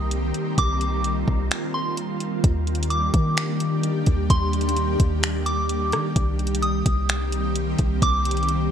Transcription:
Already playing: C2 D#3 G3 A#3 C4 G4 A#4 D#5 C6
0.11 closed hi-hat
0.34 closed hi-hat
0.58 C2 F4 D6, kick, closed hi-hat
0.81 closed hi-hat
1.04 closed hi-hat
1.28 C2, kick
1.51 finger snap, closed hi-hat
1.74 C6
1.97 closed hi-hat
2.20 closed hi-hat
2.44 D#2 D#3 G3 A#3 D4 G4, kick, closed hi-hat
2.67 closed hi-hat
2.75 closed hi-hat
2.83 closed hi-hat
2.90 D6, closed hi-hat
3.14 D#3, kick, closed hi-hat
3.37 finger snap, closed hi-hat
3.60 closed hi-hat
3.83 closed hi-hat
4.06 D#2, kick, closed hi-hat
4.30 D#2 C6, kick, closed hi-hat
4.53 closed hi-hat
4.61 closed hi-hat
4.69 closed hi-hat
4.76 closed hi-hat
5.00 D#2, kick, closed hi-hat
5.23 finger snap, closed hi-hat
5.46 D6, closed hi-hat
5.69 closed hi-hat
5.92 D#3, cross-stick, closed hi-hat
6.16 C2 D#3 G3 A#3 C4 G4, kick, closed hi-hat
6.39 closed hi-hat
6.47 closed hi-hat
6.55 closed hi-hat
6.62 D#6, closed hi-hat
6.86 C2, kick, closed hi-hat
7.09 finger snap, closed hi-hat
7.32 closed hi-hat
7.56 closed hi-hat
7.79 C2, kick, closed hi-hat
8.02 C2 D6, kick, closed hi-hat
8.25 closed hi-hat
8.31 closed hi-hat
8.37 closed hi-hat
8.43 closed hi-hat
8.49 closed hi-hat

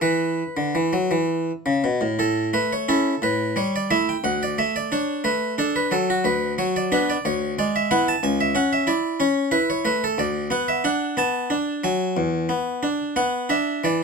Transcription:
0.01 E3 B4
0.57 D3
0.75 E3
0.93 F#3
1.11 E3
1.66 C#3
1.84 B2
2.01 A2
2.19 A2 A4
2.53 A3 B4
2.73 C#5
2.88 C#4 E4 A4
3.22 A2 B4
3.56 G3 C#5
3.76 D5
3.91 A3 E4 E5
4.09 G5
4.24 D2 F#5
4.43 D5
4.58 A3 E5
4.76 D5
4.92 D4 C#5
5.24 A3 B4
5.58 D4 A4
5.76 B4
5.91 F#3 A4
6.10 F#4
6.24 D2 B4
6.58 F#3 C#5
6.76 D5
6.92 B3 D4 B4
7.10 D5
7.25 D2 C#5
7.59 G#3 D5
7.76 E5
7.91 B3 E4 F#5
8.08 A5
8.23 C#2 G#5
8.41 E5
8.55 C#4 F#5
8.73 E5
8.87 E4 D5
9.20 C#4 C#5
9.51 E4 B4
9.70 C#5
9.85 A3 B4
10.04 A4
10.18 D2 D5
10.50 B3 F#5
10.68 E5
10.84 D4 F#5
11.17 B3 A5
11.50 D4
11.84 F#3 G#5
12.17 E2
12.49 B3
12.83 D4
13.16 B3 F#5
13.49 D4 E5
13.84 E3 D5

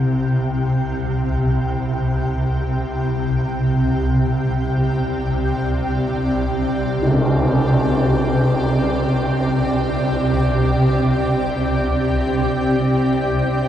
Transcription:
Already playing: C2 C3 C4 G4 C5 G5
3.58 D5
7.02 tam-tam

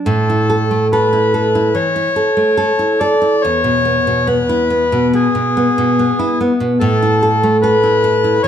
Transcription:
0.06 A2 A4
0.30 E4
0.50 A4
0.71 A3
0.92 A4 B4
1.13 E4
1.34 A4
1.55 E4
1.75 E3 C#5
1.96 E4
2.16 A4
2.37 A3
2.57 A4
2.79 E4
3.00 A4 D5
3.22 E4
3.42 E2 C#5
3.64 B2
3.85 B3
4.07 B2
4.27 B3 B4
4.49 E4
4.70 B3
4.92 B2
5.13 B3 G#4
5.35 B2
5.57 B3
5.78 B2
5.99 B3
6.19 E4
6.41 B3
6.60 B2
6.80 A2 A4
7.02 E4
7.23 A4
7.43 A3
7.62 A4 B4
7.83 E4
8.04 A4
8.24 E4
8.43 E3 C#5

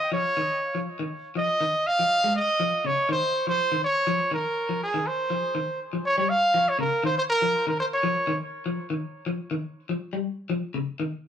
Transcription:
Already playing: D#5
0.12 F3 C#5
0.37 D#3
0.75 F3
0.99 D#3
1.35 F3 D#5
1.61 D#3
1.87 F5
1.99 F3
2.24 G#3
2.36 D#5
2.60 F3
2.85 C#3 C#5
3.09 D#3 C5
3.47 F3 C5
3.72 D#3
3.84 C#5
4.07 F3
4.31 D#3 A#4
4.69 F3
4.83 G#4
4.94 D#3
5.07 C5
5.30 F3
5.55 D#3
5.93 F3
6.05 C#5
6.18 G3 C#5
6.29 F5
6.54 F3
6.69 C#5
6.79 C#3 A#4
7.04 D#3 C5
7.18 C5
7.30 A#4
7.42 F3
7.67 D#3 A#4
7.80 C5
7.93 C#5
8.03 F3
8.27 D#3
8.66 F3
8.90 D#3
9.26 F3
9.51 D#3
9.89 F3
10.13 G3
10.50 F3
10.74 C#3
11.00 D#3

